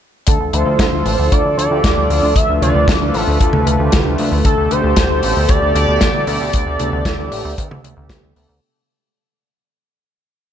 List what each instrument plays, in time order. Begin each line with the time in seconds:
0.27 analog synth bass D2, analog synth pad D3 F3 A3 F4 A4, analog synth lead A4, kick, closed hi-hat
0.40 analog synth bass D2
0.53 analog synth bass D2, analog polysynth D3 D4 F4 A4, analog synth lead C5, closed hi-hat
0.66 analog synth bass D2
0.79 analog synth bass D2, kick, snare, closed hi-hat
0.93 analog synth bass D2, analog polysynth D3 D4 F4 A4
1.06 analog synth bass A1, open hi-hat
1.19 analog synth bass D2
1.31 analog synth bass D2, analog polysynth D3 D4 F4 A4, analog synth lead D5, kick, closed hi-hat
1.45 analog synth bass D2
1.57 analog synth bass D2, analog synth lead D5, closed hi-hat
1.71 analog synth bass D2, analog polysynth D3 D4 F4 G4
1.84 analog synth bass D2, kick, snare, closed hi-hat
1.97 analog synth bass D2
2.10 analog synth bass D2, analog polysynth D3 D4 F4 A4, open hi-hat
2.23 analog synth bass D2
2.36 analog synth bass D2, analog synth pad B4, analog synth lead E5, kick, closed hi-hat
2.49 analog synth bass D2
2.62 analog synth bass D2, analog polysynth D3 D4 F4 A4, analog synth lead D5, closed hi-hat, mid tom
2.75 analog synth bass D2
2.88 analog synth bass D2, kick, snare, closed hi-hat
3.01 analog synth bass D2, analog polysynth D3 D4 F4 A4
3.14 analog synth bass A1, analog synth lead A4, open hi-hat
3.27 analog synth bass D2
3.40 analog synth bass D2, analog polysynth D3 D4 F4 A4, kick, closed hi-hat
3.53 analog synth bass D2, mid tom
3.67 analog synth bass D2, closed hi-hat
3.80 analog synth bass D2, analog polysynth D3 D4 F4 G4
3.92 analog synth bass D2, kick, snare, closed hi-hat, mid tom
4.06 analog synth bass D2
4.18 analog synth bass D2, analog polysynth D3 D4 F4 A4, open hi-hat
4.32 analog synth bass D2
4.45 analog synth bass D2, analog synth pad B2 G4 A4, analog synth lead A4, kick, closed hi-hat
4.58 analog synth bass D2
4.71 analog synth bass D2, analog polysynth D3 A3 G4 A4, analog synth lead C5, closed hi-hat
4.84 analog synth bass D2
4.96 kick, snare, closed hi-hat
5.10 analog synth bass D2, analog polysynth D3 A3 G4 A4
5.23 analog synth bass A1, open hi-hat
5.36 analog synth bass D2
5.49 analog synth bass D2, analog polysynth D3 B3 G4 A4, analog synth lead D5, kick, closed hi-hat
5.62 analog synth bass D2
5.75 analog synth bass D2, analog synth lead D5, closed hi-hat
5.88 analog synth bass D2, analog polysynth D3 B3 G4 A4
6.01 kick, snare, closed hi-hat
6.14 analog synth bass D2
6.27 analog synth bass D2, analog polysynth D3 B3 G4 A4, analog synth lead D5, open hi-hat
6.40 analog synth bass D2
6.53 analog synth bass D2, analog synth lead D5, kick, closed hi-hat
6.66 analog synth bass D2
6.79 analog synth bass D2, analog polysynth D3 B3 G4 A4, closed hi-hat, mid tom
6.92 analog synth bass D2
7.05 analog synth bass D2, kick, snare, closed hi-hat
7.18 analog synth bass D2, analog polysynth D3 B3 G4 A4
7.32 analog synth bass A1, open hi-hat
7.45 analog synth bass D2
7.58 analog polysynth D3 B3 G4 A4, kick, closed hi-hat
7.71 analog synth bass D2, mid tom
7.84 analog synth bass D2, closed hi-hat
7.97 analog synth bass D2, analog polysynth D3 B3 G4 A4
8.09 analog synth bass D2, kick, snare, closed hi-hat, mid tom
8.23 analog synth bass D2
8.36 analog synth bass D2, analog polysynth D3 B3 G4 A4, open hi-hat
8.49 analog synth bass D2